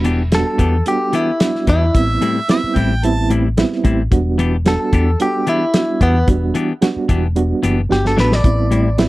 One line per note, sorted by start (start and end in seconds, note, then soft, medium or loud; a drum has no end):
0.00 0.42 E1 medium
0.00 0.18 G3 medium
0.00 0.18 B3 medium
0.00 0.18 D4 medium
0.00 0.18 F#4 medium
0.04 0.21 E3 medium
0.04 0.22 B3 medium
0.04 0.22 D4 medium
0.04 0.22 G4 medium
0.04 closed hi-hat medium
0.31 0.72 G3 medium
0.31 0.72 B3 medium
0.31 0.72 D4 medium
0.31 0.72 F#4 medium
0.31 0.86 A4 medium
0.31 snare loud
0.31 closed hi-hat medium
0.58 0.81 E2 medium
0.58 0.76 E3 medium
0.58 0.76 B3 medium
0.58 0.76 D4 medium
0.58 0.76 G4 medium
0.58 kick medium
0.58 closed hi-hat medium
0.86 1.26 G3 medium
0.86 1.26 B3 medium
0.86 1.27 D4 medium
0.86 1.27 F#4 medium
0.86 1.13 G4 medium
0.86 closed hi-hat medium
1.13 1.30 E3 medium
1.13 1.30 B3 medium
1.13 1.30 D4 medium
1.13 1.67 E4 medium
1.13 1.31 G4 medium
1.13 closed hi-hat medium
1.40 1.81 G3 medium
1.40 1.81 B3 medium
1.40 1.81 D4 medium
1.40 1.81 F#4 medium
1.40 snare loud
1.40 closed hi-hat medium
1.55 snare soft
1.67 1.89 E2 medium
1.67 1.84 E3 medium
1.67 1.84 B3 medium
1.67 1.85 D4 medium
1.67 1.95 E4 medium
1.67 1.85 G4 medium
1.67 kick medium
1.67 closed hi-hat medium
1.94 2.16 A1 medium
1.94 2.35 G3 medium
1.94 2.35 B3 medium
1.94 2.35 C4 medium
1.94 2.35 E4 medium
1.94 2.47 E5 medium
1.94 kick loud
1.94 closed hi-hat medium
2.22 2.38 A2 medium
2.22 2.39 G3 medium
2.22 2.39 C4 medium
2.22 2.39 E4 medium
2.22 closed hi-hat medium
2.49 2.89 G3 medium
2.49 2.89 B3 medium
2.49 2.89 C4 medium
2.49 2.89 E4 loud
2.49 2.78 E5 medium
2.49 snare loud
2.49 closed hi-hat medium
2.64 muted fingered electric bass stroke soft
2.76 3.62 A1 medium
2.76 2.93 A2 medium
2.76 2.93 G3 medium
2.76 2.93 C4 medium
2.76 2.93 E4 medium
2.76 3.06 G5 medium
2.76 kick medium
2.76 closed hi-hat medium
3.03 3.43 G3 medium
3.03 3.43 B3 medium
3.03 3.44 C4 medium
3.03 3.44 E4 loud
3.03 3.30 A5 medium
3.03 closed hi-hat medium
3.30 3.47 A2 medium
3.30 3.47 G3 medium
3.30 3.47 C4 medium
3.30 3.48 E4 medium
3.30 closed hi-hat medium
3.57 3.97 G3 medium
3.57 3.98 B3 medium
3.57 3.98 C4 medium
3.57 3.98 E4 medium
3.57 snare loud
3.57 closed hi-hat medium
3.72 snare soft
3.84 4.06 A1 medium
3.84 4.01 A2 medium
3.84 4.01 G3 medium
3.84 4.01 C4 medium
3.84 4.02 E4 medium
3.84 kick medium
3.84 closed hi-hat medium
4.11 4.76 E1 medium
4.11 4.51 G3 medium
4.11 4.51 B3 medium
4.11 4.52 D4 medium
4.11 4.52 F#4 medium
4.11 kick loud
4.11 closed hi-hat medium
4.38 4.55 E3 medium
4.38 4.55 B3 medium
4.38 4.56 D4 medium
4.38 4.56 G4 medium
4.38 closed hi-hat medium
4.65 5.05 G3 medium
4.65 5.06 B3 medium
4.65 5.06 D4 medium
4.65 5.06 F#4 medium
4.65 5.19 A4 medium
4.65 snare loud
4.65 closed hi-hat medium
4.93 5.14 E2 medium
4.93 5.09 E3 medium
4.93 5.10 B3 medium
4.93 5.10 D4 medium
4.93 5.10 G4 medium
4.93 kick medium
4.93 closed hi-hat medium
5.19 5.60 G3 medium
5.19 5.60 B3 medium
5.19 5.60 D4 medium
5.19 5.60 F#4 medium
5.19 5.47 G4 medium
5.19 closed hi-hat medium
5.47 5.64 E3 medium
5.47 5.64 B3 medium
5.47 5.64 D4 medium
5.47 6.01 E4 medium
5.47 5.64 G4 medium
5.47 closed hi-hat medium
5.74 6.14 G3 medium
5.74 6.14 B3 medium
5.74 6.14 D4 medium
5.74 6.14 F#4 medium
5.74 snare loud
5.74 closed hi-hat medium
6.01 6.22 E2 medium
6.01 6.18 E3 medium
6.01 6.18 B3 medium
6.01 6.28 B3 medium
6.01 6.18 D4 medium
6.01 6.18 G4 medium
6.01 kick medium
6.01 closed hi-hat medium
6.27 6.49 E1 medium
6.27 6.68 G3 medium
6.27 6.68 B3 medium
6.27 6.68 D4 medium
6.27 6.68 F#4 medium
6.27 kick loud
6.27 closed hi-hat medium
6.54 6.72 E3 medium
6.54 6.72 B3 medium
6.54 6.72 D4 medium
6.54 6.72 G4 medium
6.54 closed hi-hat medium
6.81 7.22 G3 medium
6.81 7.22 B3 medium
6.81 7.22 D4 medium
6.81 7.22 F#4 loud
6.81 snare loud
6.81 closed hi-hat medium
6.96 muted fingered electric bass stroke soft
7.09 7.52 E1 medium
7.09 7.26 E3 medium
7.09 7.26 B3 medium
7.09 7.26 D4 medium
7.09 7.27 G4 medium
7.09 kick medium
7.09 closed hi-hat medium
7.36 7.76 G3 medium
7.36 7.76 B3 medium
7.36 7.76 D4 medium
7.36 7.77 F#4 medium
7.36 closed hi-hat medium
7.63 7.88 F#1 medium
7.63 7.80 E3 medium
7.63 7.80 B3 medium
7.63 7.80 D4 medium
7.63 7.81 G4 medium
7.63 closed hi-hat medium
7.89 8.15 G1 medium
7.89 8.30 G3 medium
7.89 8.30 B3 medium
7.89 8.30 D4 medium
7.89 8.31 F#4 medium
7.89 8.05 G4 medium
7.89 snare medium
8.05 8.18 A4 medium
8.05 snare medium
8.17 8.42 A1 medium
8.17 8.34 E3 medium
8.17 8.34 B3 medium
8.17 8.34 D4 medium
8.17 8.35 G4 medium
8.17 8.34 B4 medium
8.17 snare medium
8.32 9.09 D5 medium
8.32 snare medium
8.44 9.09 A1 medium
8.44 8.84 G3 medium
8.44 8.84 B3 medium
8.44 8.85 C4 medium
8.44 8.85 E4 medium
8.44 kick loud
8.44 closed hi-hat medium
8.71 8.88 A2 medium
8.71 8.88 G3 medium
8.71 8.89 C4 medium
8.71 8.89 E4 medium
8.71 closed hi-hat medium
8.98 9.09 G3 medium
8.98 9.09 B3 medium
8.98 9.09 C4 medium
8.98 9.09 E4 loud
8.98 snare loud
8.98 closed hi-hat medium